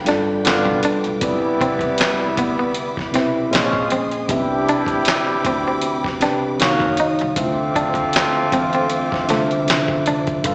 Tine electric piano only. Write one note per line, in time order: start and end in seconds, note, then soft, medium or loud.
0.00 0.05 G3 medium
0.00 0.05 D4 medium
0.00 0.06 F4 medium
0.00 0.07 A4 medium
0.00 0.46 B4 medium
0.05 0.36 G3 medium
0.05 0.36 D4 medium
0.05 0.37 F4 medium
0.05 0.37 A4 medium
0.05 0.37 D5 medium
0.44 1.06 G3 medium
0.44 1.06 D4 medium
0.44 1.07 F4 medium
0.44 1.07 A4 medium
0.44 0.53 A#4 medium
0.53 1.11 B4 medium
1.21 2.41 C3 medium
1.21 2.42 C4 medium
1.21 2.42 E4 medium
1.21 2.42 B4 medium
1.21 2.43 D5 medium
3.12 3.44 C3 medium
3.12 3.44 C4 medium
3.12 3.44 E4 medium
3.12 3.45 B4 medium
3.12 3.45 E5 loud
3.50 4.13 A#2 medium
3.50 4.13 A#3 medium
3.50 3.59 C4 medium
3.50 4.13 G#4 medium
3.50 4.14 C5 medium
3.50 4.14 D#5 medium
3.58 4.17 C#4 medium
4.28 5.49 C3 medium
4.28 4.36 B3 medium
4.28 5.49 D4 medium
4.28 5.50 G4 medium
4.28 5.50 B4 medium
4.28 5.50 E5 medium
4.35 5.52 C4 medium
6.20 6.51 C3 medium
6.20 6.52 C4 medium
6.20 6.52 D4 medium
6.20 6.52 G4 medium
6.20 6.52 B4 medium
6.20 6.53 G5 medium
6.59 7.21 D#3 medium
6.59 7.21 D#4 medium
6.59 7.22 F#4 medium
6.59 7.22 C#5 medium
6.59 7.22 F5 medium
7.36 8.57 D3 medium
7.36 8.57 D4 medium
7.36 7.44 E4 medium
7.36 8.58 C5 medium
7.36 8.58 E5 medium
7.44 8.61 F4 medium
9.28 9.59 D3 medium
9.28 9.59 D4 medium
9.28 9.60 F4 medium
9.28 9.60 C5 medium
9.28 9.61 E5 loud
9.66 10.28 D3 medium
9.66 10.29 D4 medium
9.66 10.29 F4 medium
9.66 10.29 C5 medium
9.66 10.30 E5 medium
10.43 10.55 G3 medium
10.43 10.55 D4 medium
10.43 10.55 A4 medium
10.43 10.55 B4 medium
10.43 10.55 F5 medium